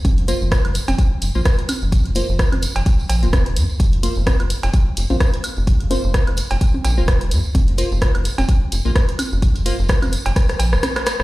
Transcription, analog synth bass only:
0.05 F1
0.41 F1
0.65 F1
0.88 F1
1.22 F1
1.35 A#1
1.82 F1
2.29 F1
2.52 F1
2.76 F1
3.10 A#1
3.23 D#1
3.56 F2
3.80 F1
4.16 F1
4.40 F1
4.63 F1
4.97 F1
5.10 A#1
5.57 F1
6.04 F1
6.27 F1
6.51 F1
6.85 A#1
6.98 D#1
7.31 F2
7.55 F1
7.92 F1
8.15 F1
8.38 F1
8.72 F1
8.85 A#1
9.32 F1
9.79 F1
10.02 F1
10.26 F1
10.60 A#1
10.73 D#1
11.20 D#1

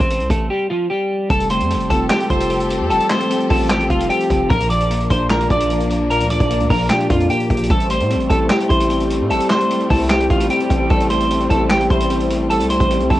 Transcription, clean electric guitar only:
Already playing: C4 C5
0.30 A3 A4
0.50 G3 G4
0.70 F3 F4
0.90 G3 G4
1.30 A4 A5
1.50 C5 C6
1.90 A4 A5
2.10 G4 G5
2.30 C5 C6
2.90 A4 A5
3.11 C5 C6
3.50 A4 A5
3.71 G4 G5
3.90 F4 F5
4.10 G4 G5
4.50 A#4 A#5
4.70 D5 D6
5.11 C5 C6
5.30 A#4 A#5
5.51 D5 D6
6.10 A#4 A#5
6.30 D5 D6
6.70 A#4 A#5
6.90 G4 G5
7.10 F4 F5
7.30 G4 G5
7.70 A4 A5
7.91 C5 C6
8.30 A4 A5
8.51 G4 G5
8.69 C5 C6
9.31 A4 A5
9.50 C5 C6
9.90 A4 A5
10.10 G4 G5
10.30 F4 F5
10.50 G4 G5
10.90 A4 A5
11.10 C5 C6
11.50 A4 A5
11.70 G4 G5
11.90 C5 C6
12.50 A4 A5
12.70 C5 C6
13.10 A4 A5

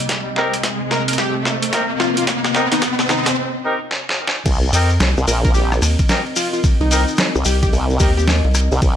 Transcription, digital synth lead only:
0.91 A#4
1.08 A#4
1.18 G4
2.00 F4
2.18 F4
2.72 D#4
3.09 D#4
5.28 A#4
5.45 A#4
5.54 G4
6.36 F4
6.53 F4
6.81 D#4
7.45 G4
7.62 G4
8.00 G4
8.17 G4

